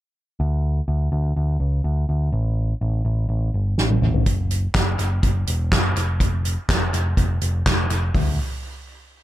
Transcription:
0.40 D2
0.88 D2
1.12 D2
1.36 D2
1.60 C#2
1.84 D2
2.09 D2
2.32 A1
2.81 A1
3.05 A1
3.29 A1
3.54 G1
3.78 A1, snare
3.90 high tom
4.02 A1, mid tom
4.14 floor tom
4.26 F#1, kick, closed hi-hat
4.51 closed hi-hat
4.75 F#1, kick, snare, clap, closed hi-hat
4.99 F#1, closed hi-hat
5.23 F#1, kick, closed hi-hat
5.47 E1, closed hi-hat
5.72 F#1, kick, snare, clap, closed hi-hat
5.96 F1, closed hi-hat
6.20 kick, closed hi-hat
6.45 closed hi-hat
6.69 F1, kick, snare, clap, closed hi-hat
6.93 F1, closed hi-hat
7.17 F1, kick, closed hi-hat
7.41 F1, closed hi-hat
7.66 F1, kick, snare, clap, closed hi-hat
7.89 F1, closed hi-hat
8.15 D2, kick, floor tom, open hi-hat

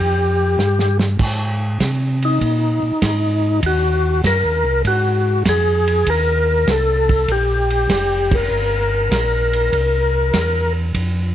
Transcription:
Already playing: G4
0.00 F2
0.58 G2, snare, hi-hat pedal
0.79 snare
0.99 snare
1.19 G#2, kick, crash
1.80 C3, kick, snare, hi-hat pedal, ride
2.22 D#4, ride
2.41 A#2, kick, ride
2.82 A#2
3.02 G#2, kick, snare, hi-hat pedal, ride
3.63 D#2 F#4, kick, ride
4.24 F#2 A#4, kick, snare, hi-hat pedal, ride
4.44 D#2
4.65 C2
4.85 G#2 F#4, kick, ride
5.45 F2 G#4, kick, snare, hi-hat pedal, ride
5.88 ride
6.07 D#2 A#4, kick, ride
6.67 C2 A4, kick, snare, hi-hat pedal, ride
7.09 kick, ride
7.28 A#1 G4, kick, ride
7.70 ride
7.89 F1, kick, snare, hi-hat pedal, ride
8.31 A#4, kick, ride
8.50 G1
9.11 A#1, kick, snare, hi-hat pedal, ride
9.53 ride
9.73 C2, kick, ride
10.33 E2, kick, snare, hi-hat pedal, ride
10.94 F2, kick, ride

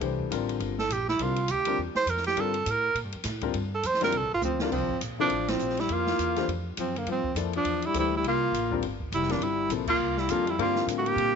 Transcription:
0.01 C2 E3 A3 D4 G4 C5, ride
0.19 kick
0.30 A1 D3 G3 C4 F4 A#4, hi-hat pedal, ride
0.49 ride
0.60 G1, ride
0.79 A4, snare
0.89 A#1 G4, hi-hat pedal, ride
1.08 E4, snare
1.19 C2 D3 G3 C4 F4 A#4, ride
1.36 ride
1.48 D2 G4, hi-hat pedal, ride
1.65 D3 G3 C4 F4 A#4, ride
1.78 E2
1.95 C5, muted upright bass stroke, snare
2.06 F2 A#4, hi-hat pedal, ride
2.17 snare
2.24 G4, snare, ride
2.36 G2 D3 G3 C4 F4 A#4, ride
2.41 A4
2.54 ride
2.66 A2, hi-hat pedal, ride
2.71 A#4
2.95 A#2, ride
3.04 G2
3.12 F2, ride
3.24 A2, snare, hi-hat pedal, ride
3.41 D3 G3 C4 F4 A#4, kick, ride
3.54 G2, ride
3.74 A4
3.83 F2 C5, hi-hat pedal, ride
3.94 snare
4.01 D3 G3 C4 F4 A#4, snare, ride
4.12 C2, ride
4.18 A4
4.22 A#1
4.33 G1 F4
4.42 D2 F3 C4, hi-hat pedal, high tom
4.59 D3 G3 A#3 C4 F4 A#4, snare
4.71 C2 F3 C4, kick, crash
4.82 A#1
4.89 G1, kick
5.01 A#1, hi-hat pedal, ride
5.19 C3 F3 A#3 D4 E4 A4
5.30 A1, ride
5.48 F3 C4, snare, ride
5.59 A#1, hi-hat pedal
5.70 snare
5.77 G3 E4, snare, ride
5.89 F2 A#3 F4, ride
6.07 snare
6.19 E2, hi-hat pedal, ride
6.36 E3 A3 D4 G4 C5, snare, ride
6.48 F2, ride
6.77 F#2 F3 C4, hi-hat pedal, ride
6.96 D3 A#3, ride
7.07 G2 F3, ride
7.11 C4
7.24 muted upright bass stroke, kick
7.35 F2 F3 A#3 E4 A4 D5, hi-hat pedal, ride
7.53 F3 D4, ride
7.65 E2, ride
7.82 E4, ride
7.87 G3
7.94 D2 E3 A3 D4 G4 C5, hi-hat pedal, ride
7.99 G3 E4
8.17 G3 E4
8.23 C2, ride
8.27 A#3 F4
8.52 A1, hi-hat pedal, ride
8.71 D3 G3 C4 F4 A#4, kick
8.82 G1, ride
9.00 kick
9.12 F1 G3 E4, hi-hat pedal, ride
9.23 snare
9.29 D3 F3 G3 C4 D4 F4 A#4, snare, ride
9.40 G1 G3 E4, ride
9.69 A#1 C3 F3 A#3 E4 A4, hi-hat pedal, ride
9.87 A#3 F4, kick, crash
9.99 C2
10.17 G3 E4, snare
10.29 F2 D3 G3 A#3 C4 F4 A4, hi-hat pedal, ride
10.47 G3 E4, ride
10.58 G2 D3 G3 A#3 C4 F4 A#4, ride
10.76 snare
10.87 A2 D3 G3 C4 F4 A#4, hi-hat pedal, ride
10.98 A3 F#4
11.06 A#3 G4, ride
11.16 A#2, ride

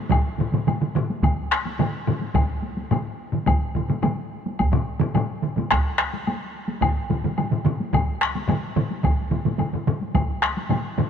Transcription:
0.10 taiko, taiko low-mid, taiko mid, taiko high, high woodblock
0.38 taiko low-mid, taiko mid, taiko high
0.52 taiko low-mid, taiko mid, taiko high
0.67 taiko low-mid, taiko mid, taiko high, high woodblock
0.81 taiko low-mid, taiko mid
0.95 taiko low-mid, taiko mid
1.10 taiko high
1.23 taiko, taiko low-mid, taiko mid, taiko high, high woodblock
1.51 taiko rim
1.65 taiko high
1.79 taiko low-mid, taiko mid, taiko high, high woodblock
2.07 taiko low-mid, taiko mid
2.21 taiko high
2.34 taiko, taiko low-mid, taiko mid, taiko high, high woodblock
2.63 taiko high
2.77 taiko high
2.91 taiko low-mid, taiko mid, taiko high, high woodblock
3.32 taiko low-mid, taiko mid
3.46 taiko, taiko low-mid, taiko mid, taiko high, high woodblock
3.75 taiko low-mid, taiko mid
3.88 taiko low-mid, taiko mid, taiko high
4.03 taiko low-mid, taiko mid, taiko high, high woodblock
4.46 taiko high
4.59 taiko, taiko high, high woodblock
4.72 taiko low-mid, taiko mid
5.00 taiko low-mid, taiko mid, taiko high
5.14 taiko low-mid, taiko mid, taiko high, high woodblock
5.43 taiko low-mid, taiko mid
5.56 taiko low-mid, taiko mid, taiko high
5.71 taiko rim, taiko, taiko high, high woodblock
5.98 taiko rim, high woodblock
6.14 taiko high
6.27 taiko high, high woodblock
6.68 taiko high
6.81 taiko, taiko low-mid, taiko mid, taiko high, high woodblock
7.10 taiko low-mid, taiko mid, taiko high
7.24 taiko low-mid, taiko mid, taiko high
7.37 taiko low-mid, taiko mid, taiko high, high woodblock
7.52 taiko low-mid, taiko mid
7.65 taiko low-mid, taiko mid
7.80 taiko high
7.93 taiko, taiko low-mid, taiko mid, taiko high, high woodblock
8.21 taiko rim
8.36 taiko high
8.48 taiko low-mid, taiko mid, taiko high, high woodblock
8.76 taiko low-mid, taiko mid
8.91 taiko high
9.03 taiko, taiko low-mid, taiko mid, taiko high, high woodblock
9.31 taiko low-mid, taiko mid, taiko high
9.45 taiko low-mid, taiko mid, taiko high
9.59 taiko low-mid, taiko mid, taiko high, high woodblock
9.73 taiko low-mid, taiko mid
9.87 taiko low-mid, taiko mid
10.01 taiko high
10.15 taiko, taiko low-mid, taiko mid, taiko high, high woodblock
10.42 taiko rim
10.57 taiko high
10.69 taiko low-mid, taiko mid, taiko high, high woodblock
10.98 taiko low-mid, taiko mid

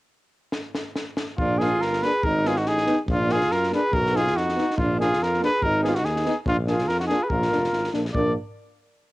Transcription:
0.52 snare
0.75 snare
0.96 snare
1.17 snare
1.38 A#1 D4 F4, kick
1.57 A#3 G#4, snare
1.62 D4 F4
1.80 G1 A#4, snare
1.85 F4
1.93 snare
2.01 A#3 D4 B4, snare
2.06 G#4
2.23 G#1 D#4 A#4, kick
2.44 B3 D#4 F4 G#4, snare
2.56 D#4 F#4, snare
2.65 A1 D#4 G#4, snare
2.78 snare
2.86 B3 D#4, snare
3.07 A#1, kick
3.11 D4 F4
3.27 A#3, snare
3.31 D4 F4 G#4
3.41 snare
3.50 F#2 F4 A#4, snare
3.63 snare
3.70 A#3 D4 G#4, snare
3.75 B4
3.92 B1 A#4, kick
3.96 F#4
4.07 snare
4.11 B3 D#4
4.16 F4 G#4, snare
4.27 snare
4.34 F2 D#4 F#4, snare
4.49 snare
4.55 B3 D#4, snare
4.70 snare
4.77 A#1 F4, kick
4.82 D4
4.98 A#3 D4 F4 G#4, snare
5.13 snare
5.20 F2 F4 A#4, snare
5.33 snare
5.39 A#3 D4, snare
5.44 G#4 B4
5.61 G#1 D#4 A#4, kick
5.82 B3 D#4 G#4, snare
5.88 F4 G#4
5.93 F4 F#4, snare
5.99 D#4
6.04 D#2 D#4 G#4, snare
6.16 snare
6.24 B3 D#4, snare
6.46 A#1 D4 F4, kick
6.67 A#3 D4 F4 G#4, snare
6.78 snare
6.88 F2 F4 A#4, snare
7.00 D#4 F#4, snare
7.07 A#3 D4 G#4, snare
7.13 F4
7.23 G#4 B4
7.29 A#1 F4 A#4, kick
7.42 snare
7.50 F1 A#3 D4, snare
7.64 snare
7.72 G#1, snare
7.84 snare
7.93 A#1 A#3 D4, snare
8.05 snare
8.13 A#1 A#3 D4 D5, kick

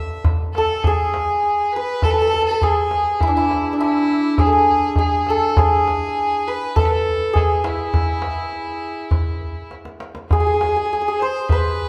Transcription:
Already playing: A4 B4 D5 E5
0.10 tombak ka
0.24 tombak dum
0.54 A4, tombak tek
0.70 tombak ka
0.83 G#4, tombak dum
1.14 tombak tek
1.28 tombak ka
1.43 tombak ka
1.72 B4
2.02 A4, tombak dum
2.11 A4 B4
2.19 A4
2.27 A4
2.33 A4, tombak ka
2.42 A4
2.47 A4, tombak ka
2.62 G#4, tombak dum
2.91 tombak tek
3.06 tombak ka
3.20 E4, tombak dum
3.28 D4
3.35 E4
3.51 tombak tek
3.65 tombak ka
3.73 D4
3.80 E4, tombak ka
4.38 G#4, tombak dum
4.47 A4
4.53 G#4
4.68 tombak ka
4.82 tombak ka
4.96 G#4, tombak dum
5.26 A4, tombak tek
5.42 tombak ka
5.49 A4
5.57 G#4, tombak dum
5.88 tombak tek
6.03 tombak ka
6.17 tombak ka
6.47 B4
6.76 A4, tombak dum
6.86 B4
6.91 A4
7.07 tombak ka
7.22 tombak ka
7.33 G#4, tombak dum
7.64 E4, tombak tek
7.79 tombak ka
7.94 tombak dum
8.07 tombak ka
8.22 tombak tek
8.37 tombak ka
8.52 tombak ka
8.68 tombak ka
9.11 tombak dum
9.41 tombak ka
9.55 tombak ka
9.71 tombak tek
9.85 tombak ka
10.00 tombak tek
10.15 tombak ka
10.31 G#4, tombak dum
10.40 G#4
10.47 G#4, tombak ka
10.54 G#4
10.61 G#4, tombak tek
10.68 G#4
10.76 G#4, tombak ka
10.85 G#4
10.91 G#4, tombak ka
11.02 G#4
11.06 G#4, tombak ka
11.20 C5
11.49 B4, tombak dum

